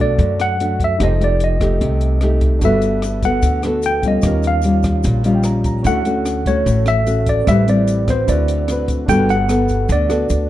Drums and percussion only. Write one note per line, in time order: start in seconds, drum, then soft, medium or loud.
0.19 kick medium
0.19 closed hi-hat soft
0.40 cross-stick soft
0.40 closed hi-hat soft
0.60 closed hi-hat soft
0.80 kick medium
0.80 closed hi-hat soft
1.00 kick medium
1.00 cross-stick medium
1.00 closed hi-hat medium
1.21 closed hi-hat soft
1.40 closed hi-hat soft
1.61 kick soft
1.61 cross-stick medium
1.61 closed hi-hat soft
1.81 kick medium
1.81 closed hi-hat medium
2.01 closed hi-hat soft
2.21 cross-stick medium
2.21 closed hi-hat soft
2.41 kick soft
2.41 closed hi-hat soft
2.61 kick medium
2.61 closed hi-hat medium
2.61 shaker medium
2.82 closed hi-hat soft
2.82 shaker soft
3.02 cross-stick medium
3.02 closed hi-hat soft
3.02 shaker medium
3.22 kick soft
3.22 closed hi-hat soft
3.22 shaker soft
3.42 kick medium
3.42 closed hi-hat medium
3.42 shaker medium
3.63 cross-stick medium
3.63 closed hi-hat soft
3.63 shaker soft
3.82 closed hi-hat soft
3.82 shaker medium
4.03 kick soft
4.03 closed hi-hat soft
4.03 shaker soft
4.22 kick medium
4.22 cross-stick medium
4.22 closed hi-hat medium
4.22 shaker medium
4.43 closed hi-hat soft
4.43 shaker soft
4.62 closed hi-hat soft
4.62 shaker medium
4.83 kick soft
4.83 cross-stick medium
4.83 closed hi-hat soft
4.83 shaker soft
5.03 kick medium
5.03 closed hi-hat medium
5.03 shaker medium
5.24 closed hi-hat soft
5.24 shaker soft
5.43 cross-stick medium
5.43 closed hi-hat soft
5.43 shaker medium
5.64 kick soft
5.64 closed hi-hat soft
5.64 shaker soft
5.84 kick medium
5.84 closed hi-hat medium
5.84 shaker medium
6.05 closed hi-hat soft
6.05 shaker soft
6.26 cross-stick medium
6.26 closed hi-hat soft
6.26 shaker medium
6.46 kick soft
6.46 closed hi-hat soft
6.46 shaker soft
6.66 kick medium
6.66 closed hi-hat soft
6.66 shaker medium
6.86 cross-stick medium
6.86 closed hi-hat soft
6.86 shaker soft
7.07 closed hi-hat soft
7.07 shaker medium
7.26 kick medium
7.26 closed hi-hat soft
7.26 shaker soft
7.47 kick medium
7.47 cross-stick medium
7.47 closed hi-hat medium
7.47 shaker medium
7.68 closed hi-hat soft
7.68 shaker soft
7.88 closed hi-hat soft
7.88 shaker medium
8.08 kick soft
8.08 cross-stick soft
8.08 closed hi-hat soft
8.08 shaker soft
8.28 kick medium
8.28 closed hi-hat medium
8.28 shaker medium
8.48 closed hi-hat soft
8.48 shaker soft
8.68 cross-stick medium
8.68 closed hi-hat soft
8.68 shaker medium
8.88 kick soft
8.88 closed hi-hat soft
8.88 shaker soft
9.08 kick medium
9.08 closed hi-hat soft
9.08 shaker medium
9.29 closed hi-hat soft
9.29 shaker soft
9.49 cross-stick medium
9.49 closed hi-hat soft
9.49 shaker medium
9.68 kick soft
9.68 closed hi-hat soft
9.68 shaker soft
9.89 kick medium
9.89 closed hi-hat soft
9.89 shaker medium
10.10 cross-stick medium
10.10 closed hi-hat soft
10.10 shaker soft
10.29 closed hi-hat soft
10.29 shaker medium